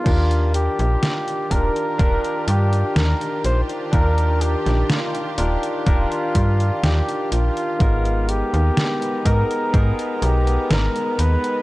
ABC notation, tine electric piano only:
X:1
M:4/4
L:1/8
Q:1/4=62
K:Eb
V:1 name="Tine electric piano"
[DFGB]3 [DFGB] [DFGB] z3 | [DFGB]3 [DFGB] [DFGB] z3 | [A,_CEB]3 [CEAB] [CEAB] z3 |]